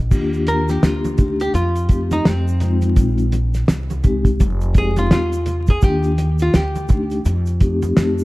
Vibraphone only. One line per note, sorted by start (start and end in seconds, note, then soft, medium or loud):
0.11 1.12 A#3 medium
0.11 1.13 D4 medium
0.11 1.13 F4 medium
0.11 1.13 G4 medium
1.17 1.45 A3 medium
1.17 1.45 D4 medium
1.17 1.46 D#4 medium
1.17 1.46 G4 medium
1.89 2.34 A3 medium
1.89 2.34 C4 medium
1.89 2.34 D#4 medium
1.89 2.35 G4 medium
2.61 2.96 G#3 medium
2.61 2.96 C4 medium
2.61 2.97 D#4 medium
2.61 2.97 F4 medium
2.97 3.24 G#3 medium
2.97 3.24 C4 medium
2.97 3.25 D#4 medium
2.97 3.25 F4 medium
4.03 4.31 G#3 medium
4.03 4.31 C4 medium
4.03 4.31 D#4 medium
4.03 4.31 G4 loud
4.74 5.19 G#3 medium
4.74 5.19 C4 medium
4.74 5.20 D#4 medium
4.74 5.20 G4 medium
5.82 6.09 A#3 medium
5.82 6.10 D4 medium
5.82 6.10 F4 medium
5.82 6.10 G4 medium
6.89 7.17 A3 medium
6.89 7.17 D4 medium
6.89 7.17 D#4 medium
6.89 7.17 G4 medium
7.60 7.95 A3 medium
7.60 7.96 C4 medium
7.60 7.96 D#4 medium
7.60 7.96 G4 medium
7.96 8.24 A3 medium
7.96 8.24 C4 medium
7.96 8.24 D#4 medium